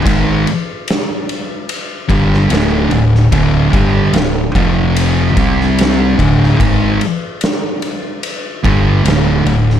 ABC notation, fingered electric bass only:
X:1
M:4/4
L:1/8
Q:1/4=73
K:Dm
V:1 name="Fingered electric bass" clef=bass
^G,,, z4 =G,,, D,,, D,,, | D,,, G,,, D,,, F,,,2 C,,2 D,,, | ^G,,, z4 =G,,, D,,, D,,, |]